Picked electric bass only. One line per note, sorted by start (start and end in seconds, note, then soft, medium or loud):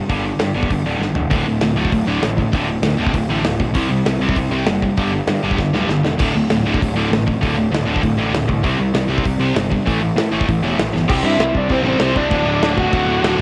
0.09 0.32 G1 medium
0.39 0.51 G2 medium
0.55 0.66 G1 medium
0.70 0.81 G1 medium
0.84 0.96 D1 medium
0.99 1.11 G1 medium
1.14 1.26 E1 medium
1.32 1.43 D1 loud
1.46 1.57 D1 medium
1.61 1.72 D1 medium
1.76 1.87 D1 medium
1.92 2.03 D1 medium
2.06 2.18 D1 medium
2.21 2.44 A1 medium
2.53 2.76 D1 medium
2.82 2.94 D2 medium
2.98 3.10 D1 medium
3.13 3.25 D1 medium
3.29 3.40 A1 medium
3.43 3.55 D1 medium
3.60 3.71 B1 medium
3.75 3.86 C2 loud
3.89 4.01 C2 medium
4.06 4.17 C2 medium
4.20 4.32 C2 medium
4.36 4.47 C2 medium
4.50 4.62 C2 medium
4.65 4.89 F#1 medium
4.97 5.20 G1 medium
5.27 5.39 G2 medium
5.43 5.55 G1 medium
5.58 5.69 G1 medium
5.73 5.85 D1 medium
5.89 6.00 G1 medium
6.04 6.15 E1 medium
6.20 6.31 D1 medium
6.35 6.46 D1 medium
6.50 6.61 D1 medium
6.64 6.76 D1 medium
6.82 6.93 D1 medium
6.95 7.07 D1 medium
7.10 7.33 A1 medium
7.43 7.65 D1 medium
7.71 7.83 D2 medium
7.86 7.98 D1 medium
8.03 8.14 D1 medium
8.17 8.28 A1 medium
8.31 8.43 D1 medium
8.49 8.60 C2 medium
8.64 8.75 C2 medium
8.80 8.91 C2 medium
8.94 9.05 C2 medium
9.08 9.20 C2 medium
9.26 9.37 C2 medium
9.38 9.50 C2 medium
9.55 9.78 G1 medium
9.87 10.09 A1 medium
10.16 10.27 A2 medium
10.32 10.43 A1 medium
10.49 10.59 A1 medium
10.61 10.73 E1 medium
10.78 10.89 A1 medium
10.93 11.05 G1 medium
11.09 11.21 C2 medium
11.23 11.35 G2 loud
11.38 11.50 C2 medium
11.54 11.66 C2 loud
11.69 11.81 C2 medium
11.83 11.96 A1 medium
11.98 12.11 C2 loud
12.16 12.28 C2 medium
12.31 12.43 D1 medium
12.44 12.57 D1 medium
12.60 12.85 D1 medium
12.92 13.04 D1 medium
13.07 13.19 D1 medium
13.22 13.34 D1 loud